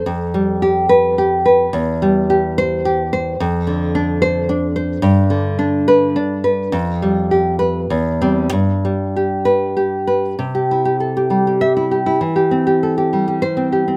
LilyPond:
\new Staff \with { instrumentName = "Nylon-string guitar" } { \time 3/4 \key c \major \tempo 4 = 104 << { r4. b'4 r8 | r4. c''4 r8 | r4. c''4 r8 | r4. b'4 r8 |
r4. b'8 r8 c'8 | r4. b'4 r8 | r2 e''8 r8 | r2 c''8 r8 | } \\ { f,8 g8 g'4 g'8 b'8 | e,8 g8 g'4 g'8 c''8 | f,8 d8 d'4 d'8 c''8 | g,8 d8 d'4 d'8 b'8 |
f,8 g8 g'4 e,8 g8 | g,8 g8 g'4 g'8 b'8 | c16 g'16 e'16 g'16 a'16 g'16 g16 g'8 e'16 g'16 e'16 | e16 g'16 c'16 g'16 a'16 g'16 g16 g'8 c'16 g'16 c'16 | } >> }